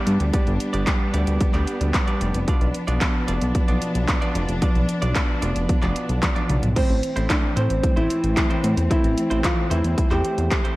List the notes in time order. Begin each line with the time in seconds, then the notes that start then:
Already playing: G2 G3 B3 D4 G4 D5
0.07 G2, closed hi-hat
0.20 D2, closed hi-hat
0.33 G2 B3 D4 G4 D5, kick, closed hi-hat
0.47 G1, closed hi-hat
0.60 closed hi-hat
0.73 G1 G2 B3 D4 G4 D5, closed hi-hat
0.87 kick, clap, closed hi-hat
1.13 D2 G2 B3 D4 G4 D5, closed hi-hat
1.27 D2, closed hi-hat
1.41 kick, closed hi-hat
1.54 D2 G2 B3 D4 G4 D5, clap, closed hi-hat
1.67 closed hi-hat
1.81 D2, closed hi-hat
1.94 kick, clap, closed hi-hat
2.07 G2 B3 D4 G4 D5, closed hi-hat
2.21 F1, closed hi-hat
2.34 F1, closed hi-hat
2.47 B2 F3 B3 D4 F4 D5, kick, closed hi-hat
2.61 B1, closed hi-hat
2.75 closed hi-hat
2.87 B1 B2 B3 D4 F4 D5, closed hi-hat
3.01 kick, clap, closed hi-hat
3.28 F1 B2 B3 D4 F4 D5, closed hi-hat
3.41 B1, closed hi-hat
3.55 kick, closed hi-hat
3.68 B1 B2 B3 D4 F4 D5, closed hi-hat
3.82 closed hi-hat
3.95 B1, closed hi-hat
4.08 kick, clap, closed hi-hat
4.21 B2 B3 D4 F4 D5, closed hi-hat
4.35 F1, closed hi-hat
4.49 F1, closed hi-hat
4.61 B2 B3 D4 F4 D5, kick, closed hi-hat
4.75 B1, closed hi-hat
4.89 closed hi-hat
5.02 B1 B2 B3 D4 F4 D5, closed hi-hat
5.16 kick, clap, closed hi-hat
5.42 F1 B2 B3 D4 F4 D5, closed hi-hat
5.56 F1, closed hi-hat
5.69 kick, closed hi-hat
5.82 F1 B2 B3 D4 F4 D5, clap, closed hi-hat
5.96 closed hi-hat
6.09 B1, closed hi-hat
6.23 kick, clap, closed hi-hat, high tom
6.35 B2 B3 D4 F4 D5, closed hi-hat, high tom
6.50 B1, closed hi-hat, mid tom
6.63 B1, closed hi-hat, mid tom
6.76 A2 E3 A3 C4 E4 C5, kick, closed hi-hat, crash
6.90 A1, closed hi-hat
7.03 closed hi-hat
7.16 A1 A2 A3 C4 E4 C5, closed hi-hat
7.30 D4, kick, clap, closed hi-hat
7.56 A2 A3 C4 E4 C5, closed hi-hat
7.70 A1, closed hi-hat
7.83 kick, closed hi-hat
7.96 A1 A2 A3 C4 E4 C5, closed hi-hat
8.10 closed hi-hat
8.24 A1, closed hi-hat
8.37 kick, clap, closed hi-hat
8.50 A2 A3 C4 E4 C5, closed hi-hat
8.64 A2, closed hi-hat
8.77 E2, closed hi-hat
8.90 A2 A3 C4 E4 C5, kick, closed hi-hat
9.04 A1, closed hi-hat
9.18 closed hi-hat
9.30 A1 A2 A3 C4 E4 C5, closed hi-hat
9.44 F4, kick, clap, closed hi-hat
9.70 E2 A2 A3 C4 E4 C5, closed hi-hat
9.84 E2, closed hi-hat
9.98 kick, closed hi-hat
10.11 E2 A2 A3 C4 E4 G4 C5, clap, closed hi-hat
10.25 closed hi-hat
10.38 E2, closed hi-hat
10.51 kick, clap, closed hi-hat
10.64 A2 A3 C4 E4 C5, closed hi-hat